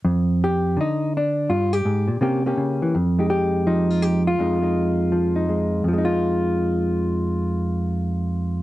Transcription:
hollow-body jazz guitar
0.05 F2
0.44 G4
0.77 D3 D#4
1.17 D4
1.49 G2 F4
1.73 G4
1.85 G#2
2.08 A#2
2.21 C3 A#3 C#4 G4
2.46 A#3 C#4 G4
2.57 C#3
2.82 E3
2.95 F2
3.19 G#3 D#4 G4
3.30 G4
3.67 F3 D#4
3.90 F4
4.02 G4
4.27 F4
4.39 F2 G#3 D#4
4.62 G#3 D#4
5.12 F3
5.36 D#4
5.49 G#3
5.84 F2
5.88 F3
5.93 G#3
5.98 D#4
6.05 F4

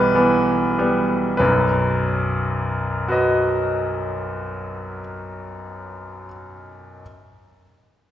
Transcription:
grand piano
Already playing: B1 B2 E3 G3 B3 B4
0.15 E3 B3
0.78 G3 B3
1.37 B1 F#2 B4
3.08 F#4 B4 D#5

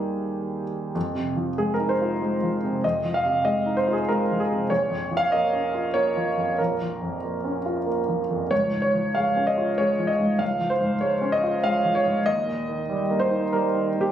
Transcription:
grand piano
Already playing: D#2 G3 A#3 D#4 G4 G#4
0.95 F2
1.15 C3
1.36 F3
1.58 G#3 G#4
1.74 A#4
1.79 D#4
1.89 C5
2.01 F4
2.22 G#3
2.43 F3
2.63 C3
2.84 F2 D#5
3.04 F3
3.14 F5
3.25 C3
3.45 G#3 D#5
3.66 D#4
3.77 C5
3.88 F4
3.93 G#4
4.09 G#3 A#4
4.31 F3
4.40 G#4
4.51 C3
4.70 A#1 C#5
4.90 F2
5.11 F3
5.17 F5
5.32 A#3 D#5
5.53 C#4
5.75 F4
5.94 A#3 C#5
6.17 F3
6.37 F2
6.58 A#1 A#4
6.81 F3
7.02 F2
7.24 A#3
7.45 C#4
7.66 F4
7.86 A#3
8.08 F3
8.30 F2
8.51 C#2 C#5
8.72 G#2
8.82 C#5
8.94 F3
9.15 G#3 F5
9.37 C#4
9.47 D#5
9.58 F4
9.78 G#3 C#5
9.99 F3
10.07 D#5
10.19 G#2
10.39 C#2 F5
10.60 F3
10.70 C5
10.81 G#2
11.01 G#3 C#5
11.22 C#4
11.32 D#5
11.44 F4
11.63 G#3 F5
11.85 F3
11.95 C#5
12.05 G#2
12.26 D#2 D#5
12.46 A#2
12.68 D#3
12.89 G3
13.10 A#3
13.20 C5
13.31 D#4
13.53 G3 A#4
13.74 D#3
13.96 A#2
14.01 G4

